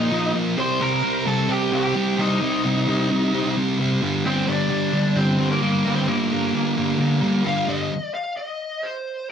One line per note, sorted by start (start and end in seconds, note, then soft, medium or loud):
0.00 0.10 F3 loud
0.00 0.11 A#3 loud
0.00 0.31 D#4 medium
0.00 0.32 D#5 medium
0.11 0.33 A#2 medium
0.11 0.34 F3 loud
0.11 0.34 A#3 loud
0.34 0.56 A#2 medium
0.34 0.56 F3 medium
0.34 0.57 A#3 loud
0.57 0.80 C3 medium
0.57 0.81 G3 loud
0.57 0.81 C4 loud
0.57 0.80 C5 medium
0.57 0.82 C6 loud
0.81 1.03 C3 medium
0.81 1.03 G3 medium
0.81 1.04 C4 loud
0.81 1.24 A#4 medium
0.81 1.27 A#5 medium
1.03 1.24 C3 loud
1.03 1.26 G3 loud
1.03 1.25 C4 loud
1.25 1.48 C3 medium
1.25 1.49 G3 loud
1.25 1.49 C4 medium
1.25 1.48 A4 medium
1.25 1.50 A5 medium
1.49 1.71 C3 loud
1.49 1.72 G3 loud
1.49 1.72 C4 loud
1.49 1.72 G4 medium
1.49 1.72 G5 medium
1.72 1.94 C3 loud
1.72 1.96 G3 loud
1.72 1.96 C4 loud
1.72 2.16 G4 medium
1.72 2.21 G5 medium
1.96 2.17 C3 medium
1.96 2.19 G3 loud
1.96 2.19 C4 loud
2.18 2.40 C3 medium
2.18 2.41 G3 medium
2.18 2.41 C4 medium
2.18 3.53 D#4 medium
2.18 3.53 D#5 medium
2.41 2.63 C3 loud
2.41 2.65 G3 loud
2.41 2.64 C4 loud
2.64 2.87 C3 medium
2.64 2.88 G3 medium
2.64 2.88 C4 medium
2.88 3.10 C3 loud
2.88 3.11 G3 loud
2.88 3.10 C4 loud
3.11 3.32 C3 medium
3.11 3.33 G3 loud
3.11 3.33 C4 loud
3.34 3.55 C3 loud
3.34 3.57 G3 loud
3.34 3.57 C4 loud
3.57 3.78 C3 loud
3.57 3.79 G3 loud
3.57 3.79 C4 loud
3.79 4.00 C3 medium
3.79 4.02 G3 loud
3.79 4.01 C4 loud
4.01 4.24 G2 medium
4.01 4.24 D3 loud
4.01 4.26 G3 loud
4.25 4.47 G2 medium
4.25 4.47 D3 loud
4.25 4.48 G3 medium
4.25 4.46 C4 medium
4.25 4.49 C5 loud
4.47 4.69 G2 medium
4.47 4.69 D3 medium
4.47 4.70 G3 medium
4.47 5.12 D4 medium
4.47 5.13 D5 loud
4.69 4.92 G2 loud
4.69 4.92 D3 loud
4.69 4.93 G3 loud
4.93 5.15 G2 medium
4.93 5.15 D3 loud
4.93 5.17 G3 medium
5.16 5.37 G2 loud
5.16 5.38 D3 loud
5.16 5.40 G3 loud
5.16 5.49 C4 medium
5.16 5.51 C5 medium
5.38 5.61 G2 medium
5.38 5.61 D3 loud
5.38 5.62 G3 loud
5.51 5.93 A#3 medium
5.51 5.95 A#4 medium
5.62 5.83 G2 medium
5.62 5.84 D3 loud
5.62 5.85 G3 loud
5.84 6.06 G2 medium
5.84 6.07 D3 medium
5.84 6.08 G3 loud
5.96 6.07 C4 medium
5.96 6.07 C5 medium
6.07 6.30 G2 medium
6.07 6.31 D3 loud
6.07 6.31 G3 loud
6.07 7.41 A#3 medium
6.07 7.45 A#4 medium
6.31 6.53 G2 medium
6.31 6.53 D3 medium
6.31 6.54 G3 medium
6.54 6.75 G2 loud
6.54 6.76 D3 loud
6.54 6.76 G3 loud
6.76 6.98 G2 medium
6.76 6.98 D3 medium
6.76 6.99 G3 loud
6.99 7.21 G2 loud
6.99 7.21 D3 loud
6.99 7.22 G3 loud
7.22 7.43 G2 loud
7.22 7.44 D3 loud
7.22 7.44 G3 loud
7.44 7.66 G2 medium
7.44 7.67 D3 medium
7.44 7.68 G3 medium
7.44 7.69 F5 loud
7.68 7.89 G2 medium
7.68 7.90 D3 medium
7.68 7.90 G3 medium
7.68 8.14 D#5 loud
8.14 8.37 F5 medium
8.37 8.85 D#5 medium
8.83 9.30 C5 medium